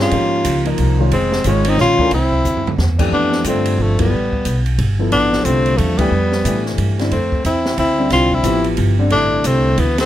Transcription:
0.00 0.11 G2 medium
0.00 0.11 G3 medium
0.00 0.11 C4 medium
0.00 0.67 C#4 medium
0.00 0.12 F4 medium
0.00 0.68 F4 medium
0.00 0.12 G#4 medium
0.11 0.44 G#2 medium
0.11 0.62 F3 medium
0.11 0.62 A#3 medium
0.11 0.63 D#4 medium
0.11 0.63 G4 medium
0.11 ride medium
0.45 0.78 C#2 medium
0.45 hi-hat pedal medium
0.45 ride medium
0.65 0.97 F3 medium
0.65 0.97 A#3 medium
0.65 0.98 D#4 medium
0.65 0.98 A#4 medium
0.65 ride soft
0.78 1.10 C2 medium
0.78 ride medium
0.99 1.11 D#3 medium
0.99 1.11 G#3 medium
0.99 1.11 C#4 medium
0.99 1.11 F4 medium
1.11 1.44 F1 medium
1.11 1.43 G#3 medium
1.11 1.44 C4 medium
1.11 ride medium
1.32 snare medium
1.44 1.77 G#1 medium
1.44 1.95 D#3 medium
1.44 1.68 G#3 medium
1.44 1.95 G#3 medium
1.44 1.96 C#4 medium
1.44 1.71 C#4 medium
1.44 1.96 F4 medium
1.44 hi-hat pedal soft
1.44 ride medium
1.65 1.79 C4 medium
1.65 ride medium
1.69 1.80 D#4 medium
1.78 1.97 A#1 medium
1.78 2.10 C#4 medium
1.78 2.11 F4 loud
1.78 snare soft
1.99 2.10 E3 medium
1.99 2.11 A3 medium
1.99 2.11 D4 medium
1.99 2.11 A#4 medium
1.99 muted upright bass stroke soft
1.99 kick medium
2.11 2.44 C2 medium
2.11 2.75 C4 medium
2.11 2.76 E4 medium
2.11 ride medium
2.32 kick soft
2.45 2.77 D2 medium
2.45 hi-hat pedal medium
2.57 floor tom medium
2.67 floor tom medium
2.78 3.11 E2 medium
2.78 snare medium
2.99 3.42 F2 medium
2.99 3.42 E3 medium
2.99 3.43 A3 medium
2.99 3.43 D4 medium
2.99 3.43 G4 medium
2.99 kick medium
2.99 crash medium
3.11 3.44 F2 medium
3.11 3.43 B3 medium
3.11 3.44 D4 medium
3.32 snare soft
3.44 3.77 G2 medium
3.44 3.95 D3 medium
3.44 3.95 G3 medium
3.44 3.82 A3 medium
3.44 3.95 C4 medium
3.44 3.96 F4 medium
3.44 hi-hat pedal soft
3.44 ride medium
3.49 3.83 C4 medium
3.66 ride medium
3.78 4.10 G1 medium
3.78 4.00 F3 medium
3.82 4.01 A3 medium
3.99 4.10 F3 medium
3.99 4.63 G3 medium
3.99 4.10 B3 medium
3.99 4.63 B3 medium
3.99 4.11 E4 medium
3.99 4.11 A4 medium
3.99 kick medium
3.99 ride medium
4.12 4.44 A1 medium
4.33 kick soft
4.45 4.77 B1 medium
4.45 hi-hat pedal medium
4.45 ride medium
4.66 ride soft
4.78 5.10 G1 medium
4.78 ride medium
4.99 5.42 F3 medium
4.99 5.43 B3 medium
4.99 5.43 E4 medium
4.99 5.43 A4 medium
5.12 5.44 A1 medium
5.12 5.44 B3 medium
5.12 5.46 D4 loud
5.12 ride medium
5.33 snare soft
5.43 5.77 C2 medium
5.43 5.95 D3 medium
5.43 5.95 G3 medium
5.43 5.78 A3 medium
5.43 5.79 C4 medium
5.43 5.95 C4 medium
5.43 hi-hat pedal soft
5.43 ride medium
5.47 5.96 F4 medium
5.66 ride soft
5.76 6.11 E2 medium
5.76 5.99 F3 medium
5.76 5.99 A3 medium
5.76 ride medium
5.97 6.10 E3 medium
5.97 6.65 G3 medium
5.97 6.10 A3 medium
5.97 6.65 B3 medium
5.97 6.11 D4 medium
5.97 6.11 G4 medium
5.97 kick medium
5.97 ride medium
6.11 6.44 F2 medium
6.32 snare soft
6.44 6.77 A2 medium
6.44 6.94 E3 medium
6.44 6.95 A3 medium
6.44 6.95 D4 soft
6.44 6.95 G4 medium
6.44 hi-hat pedal soft
6.44 ride medium
6.66 snare soft
6.78 7.10 G2 medium
6.78 ride medium
6.99 7.10 D3 medium
6.99 7.10 G3 medium
6.99 7.10 C4 medium
6.99 7.11 E4 medium
6.99 snare soft
6.99 ride soft
7.11 7.44 F2 medium
7.11 7.42 A3 medium
7.11 7.43 C4 medium
7.11 ride medium
7.32 kick medium
7.45 7.77 E2 medium
7.45 7.76 C4 medium
7.45 7.76 E4 medium
7.45 hi-hat pedal soft
7.45 ride medium
7.65 snare soft
7.78 8.10 D2 medium
7.78 8.09 C4 medium
7.78 8.10 E4 medium
7.78 ride medium
7.98 8.42 D3 medium
7.98 8.42 G3 medium
7.98 8.42 C4 medium
7.98 8.43 E4 medium
8.10 8.43 C2 medium
8.10 8.32 C4 medium
8.10 8.36 F4 medium
8.10 snare soft
8.10 ride medium
8.32 8.66 C4 medium
8.32 8.67 E4 medium
8.32 kick medium
8.43 8.76 A1 medium
8.43 8.94 F3 medium
8.43 8.95 B3 medium
8.43 8.95 E4 medium
8.43 8.96 G4 medium
8.43 hi-hat pedal medium
8.43 ride medium
8.64 ride soft
8.77 9.10 G1 medium
8.77 ride medium
8.99 9.10 D3 medium
8.99 9.10 G3 medium
8.99 9.11 C4 medium
8.99 9.11 D4 medium
9.10 9.44 A1 medium
9.10 10.04 D3 medium
9.10 10.04 G3 soft
9.10 9.45 A3 medium
9.10 10.05 C4 soft
9.10 9.48 D4 loud
9.10 10.05 E4 medium
9.10 ride medium
9.44 9.77 C2 medium
9.44 9.79 A3 medium
9.44 9.81 C4 medium
9.44 hi-hat pedal medium
9.44 ride medium
9.78 10.05 D2 medium
9.78 9.99 E3 medium
9.78 9.99 B3 medium
9.78 ride medium
9.98 10.05 A3 medium
9.98 10.05 C4 medium
9.98 snare medium
9.98 ride medium

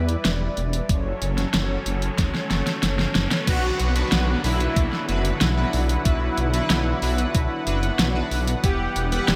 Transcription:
0.00 0.16 E2 loud
0.00 0.85 G3 medium
0.00 0.87 E4 medium
0.00 0.87 B4 medium
0.00 0.85 D5 medium
0.00 riser medium
0.09 closed hi-hat medium
0.25 0.49 E1 loud
0.25 snare loud
0.25 closed hi-hat medium
0.57 0.81 E1 medium
0.57 closed hi-hat medium
0.73 closed hi-hat medium
0.89 1.13 F#1 loud
0.89 3.45 F#3 medium
0.89 3.45 C#4 medium
0.89 3.45 A4 medium
0.89 3.45 C#5 medium
0.89 kick loud
0.89 closed hi-hat loud
1.22 1.45 F#1 medium
1.22 closed hi-hat medium
1.38 snare soft
1.38 closed hi-hat medium
1.54 1.78 F#1 loud
1.54 snare loud
1.54 closed hi-hat medium
1.86 2.10 F#1 medium
1.86 closed hi-hat medium
2.02 closed hi-hat medium
2.18 2.30 F#1 loud
2.18 kick loud
2.18 snare medium
2.18 closed hi-hat loud
2.34 snare medium
2.51 2.63 F#1 medium
2.51 snare medium
2.51 closed hi-hat medium
2.67 snare medium
2.67 closed hi-hat medium
2.83 3.07 F#1 medium
2.83 snare medium
2.83 closed hi-hat loud
2.99 snare medium
3.15 3.27 F#1 medium
3.15 snare loud
3.15 closed hi-hat medium
3.31 snare medium
3.31 closed hi-hat medium
3.47 3.71 B1 medium
3.47 8.60 D3 medium
3.47 8.60 F#3 medium
3.47 9.36 B3 medium
3.47 3.92 D4 medium
3.47 4.31 F#4 loud
3.47 3.92 F#4 medium
3.47 3.92 B4 medium
3.47 9.36 F#5 medium
3.47 kick loud
3.47 closed hi-hat loud
3.47 crash loud
3.47 downlifter medium
3.80 4.04 B1 medium
3.80 closed hi-hat medium
3.96 4.40 D4 loud
3.96 4.40 F#4 medium
3.96 4.40 B4 loud
3.96 closed hi-hat medium
4.12 4.36 B1 loud
4.12 snare loud
4.12 closed hi-hat loud
4.44 4.68 B1 medium
4.44 5.05 D4 loud
4.44 5.28 E4 loud
4.44 5.05 F#4 medium
4.44 5.05 B4 loud
4.44 open hi-hat medium
4.60 closed hi-hat medium
4.76 4.88 B1 loud
4.76 kick loud
4.76 closed hi-hat loud
4.92 snare soft
5.09 5.33 F#1 loud
5.09 5.53 D4 medium
5.09 5.53 F#4 medium
5.09 5.53 B4 loud
5.09 closed hi-hat medium
5.25 closed hi-hat medium
5.41 5.65 B1 loud
5.41 8.51 E4 loud
5.41 snare loud
5.41 closed hi-hat loud
5.57 6.02 D4 medium
5.57 6.02 F#4 medium
5.57 6.02 B4 loud
5.73 5.97 B1 medium
5.73 open hi-hat medium
5.89 closed hi-hat medium
6.05 6.29 B1 medium
6.05 6.50 D4 medium
6.05 6.50 F#4 medium
6.05 6.50 B4 medium
6.05 kick loud
6.05 closed hi-hat loud
6.38 6.61 B1 medium
6.38 closed hi-hat medium
6.54 6.98 D4 loud
6.54 6.98 F#4 medium
6.54 6.98 B4 loud
6.54 closed hi-hat medium
6.70 6.94 B1 loud
6.70 snare loud
6.70 closed hi-hat loud
7.02 7.26 B1 medium
7.02 7.63 D4 loud
7.02 7.63 F#4 medium
7.02 7.63 B4 loud
7.02 open hi-hat medium
7.18 closed hi-hat medium
7.35 7.46 B1 medium
7.35 kick loud
7.35 closed hi-hat loud
7.67 7.91 F#1 loud
7.67 8.11 D4 loud
7.67 8.11 F#4 medium
7.67 8.11 B4 loud
7.67 closed hi-hat medium
7.83 closed hi-hat medium
7.99 8.23 B1 medium
7.99 snare loud
7.99 closed hi-hat loud
8.15 8.60 D4 medium
8.15 8.60 F#4 medium
8.15 8.60 B4 loud
8.31 8.55 B1 medium
8.31 open hi-hat medium
8.47 closed hi-hat medium
8.64 8.87 E1 medium
8.64 9.36 E3 medium
8.64 9.36 G3 medium
8.64 9.08 G3 medium
8.64 9.08 B3 medium
8.64 9.08 E4 medium
8.64 9.36 G4 loud
8.64 9.08 B4 medium
8.64 9.08 F#5 medium
8.64 kick loud
8.64 closed hi-hat loud
8.96 9.20 E1 medium
8.96 closed hi-hat medium
9.12 9.36 G3 loud
9.12 9.36 B3 medium
9.12 9.36 E4 medium
9.12 9.36 B4 loud
9.12 9.36 F#5 medium
9.12 closed hi-hat medium
9.28 9.36 E1 loud
9.28 snare loud
9.28 closed hi-hat medium

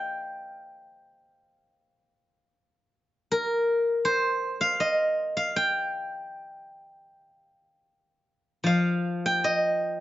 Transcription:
0.00 0.21 C5 medium
0.00 0.60 D#5 medium
0.00 1.03 F5 medium
0.00 1.83 G5 medium
3.32 5.44 A#4 medium
4.05 6.03 C5 medium
4.61 5.36 F5 medium
4.80 6.59 D#5 medium
5.37 7.03 F5 medium
5.56 7.84 G5 medium
8.64 10.00 F3 soft
8.64 10.00 F5 medium
9.26 10.00 G5 medium
9.44 10.00 D#5 medium

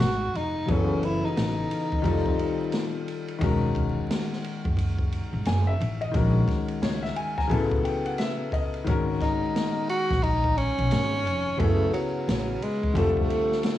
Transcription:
0.00 0.27 G#1 medium
0.00 0.64 D#3 medium
0.00 0.65 G#3 soft
0.00 0.65 C#4 soft
0.00 0.38 F#4 loud
0.00 0.66 F#4 soft
0.00 0.70 G#4 medium
0.00 snare loud
0.00 hi-hat pedal soft
0.00 ride medium
0.34 0.61 F1 medium
0.34 0.72 D#4 medium
0.34 ride medium
0.66 1.21 F#1 medium
0.66 2.01 C#3 medium
0.66 2.02 F#3 medium
0.66 2.02 B3 medium
0.66 kick loud
0.66 ride medium
0.70 2.03 E3 medium
0.70 1.06 C#4 medium
0.70 2.04 A4 medium
1.03 1.27 E4 medium
1.03 ride medium
1.26 3.08 D#4 medium
1.37 1.63 A1 medium
1.37 snare loud
1.37 hi-hat pedal medium
1.37 ride medium
1.71 ride medium
1.92 kick medium
2.02 2.31 F1 loud
2.02 3.37 D#3 medium
2.02 3.38 G3 medium
2.02 3.39 C4 medium
2.02 3.39 F4 medium
2.02 kick medium
2.02 ride medium
2.07 3.40 A4 medium
2.26 kick medium
2.39 ride medium
2.72 snare medium
2.72 hi-hat pedal soft
2.72 ride medium
3.08 ride medium
3.28 ride soft
3.39 3.94 E1 loud
3.39 6.09 D#3 medium
3.39 6.10 G#3 medium
3.39 6.10 C#4 medium
3.39 kick loud
3.39 ride medium
3.43 6.11 F#4 medium
3.43 6.11 A#4 medium
3.75 kick medium
3.75 ride medium
4.10 snare loud
4.10 hi-hat pedal medium
4.10 ride medium
4.33 snare soft
4.44 ride medium
4.65 5.18 F#1 medium
4.65 kick medium
4.77 kick medium
4.77 ride medium
4.99 kick medium
5.12 ride medium
5.33 5.43 G#1 medium
5.45 5.72 F#1 medium
5.45 5.66 G#5 medium
5.45 snare loud
5.45 hi-hat pedal soft
5.45 ride medium
5.67 6.00 E5 medium
5.80 6.07 A1 medium
5.80 ride medium
6.01 6.33 D#5 medium
6.01 ride soft
6.12 6.40 A#1 loud
6.12 7.46 D#3 medium
6.12 7.47 G#3 medium
6.12 7.48 C#4 medium
6.12 7.48 F#4 medium
6.12 kick loud
6.12 ride medium
6.17 7.49 A#4 medium
6.48 kick medium
6.48 snare soft
6.48 ride soft
6.68 ride soft
6.82 7.09 C#2 medium
6.82 7.02 C#5 medium
6.82 snare loud
6.82 hi-hat pedal medium
6.82 ride medium
7.03 7.35 E5 medium
7.03 snare soft
7.16 7.36 G#5 medium
7.16 ride medium
7.38 7.70 G#5 medium
7.38 7.50 A#5 medium
7.38 kick medium
7.38 snare soft
7.47 7.76 A1 loud
7.47 8.83 C#3 medium
7.47 8.83 F#3 medium
7.47 8.84 B3 medium
7.47 8.84 E4 medium
7.47 7.82 A5 medium
7.47 kick medium
7.47 ride medium
7.53 8.85 A4 medium
7.71 kick medium
7.84 8.04 G5 medium
7.84 ride medium
8.05 8.18 F#5 medium
8.05 ride soft
8.18 8.50 E5 medium
8.18 snare medium
8.18 hi-hat pedal soft
8.18 ride medium
8.52 8.85 D#5 medium
8.52 kick medium
8.52 ride medium
8.74 ride soft
8.84 9.40 G#1 medium
8.84 11.54 D#3 medium
8.84 11.55 G#3 medium
8.84 11.56 C#4 medium
8.84 11.56 F#4 medium
8.84 kick loud
8.84 ride medium
8.90 11.57 A#4 medium
9.21 9.86 D#4 medium
9.21 kick medium
9.21 snare soft
9.21 ride medium
9.56 snare loud
9.56 hi-hat pedal medium
9.56 ride medium
9.89 10.25 F#4 loud
9.89 ride medium
10.11 10.63 A#1 medium
10.11 kick medium
10.11 snare soft
10.22 10.59 D#4 loud
10.22 kick medium
10.22 ride medium
10.44 kick medium
10.57 11.61 C#4 loud
10.57 ride medium
10.78 10.88 B1 medium
10.78 ride soft
10.91 11.26 G#1 medium
10.91 snare loud
10.91 hi-hat pedal soft
10.91 ride medium
11.26 11.52 F1 medium
11.26 ride medium
11.57 11.86 F#1 loud
11.57 12.92 C#3 medium
11.57 12.93 F#3 soft
11.57 11.93 A3 medium
11.57 12.93 B3 medium
11.57 12.94 E4 medium
11.57 kick loud
11.57 ride medium
11.62 12.95 G#4 medium
11.94 12.64 F#3 medium
11.94 ride soft
12.28 12.54 A1 medium
12.28 snare loud
12.28 hi-hat pedal medium
12.28 ride medium
12.62 12.97 G#3 medium
12.62 ride medium
12.83 kick medium
12.93 13.22 F1 loud
12.93 13.78 D3 medium
12.93 13.78 G3 medium
12.93 13.78 A3 medium
12.93 13.78 C4 medium
12.93 13.78 F4 medium
12.93 kick medium
12.93 ride medium
12.99 13.78 A4 medium
13.17 kick loud
13.30 ride medium
13.52 snare soft
13.63 snare loud
13.63 hi-hat pedal soft
13.63 ride medium

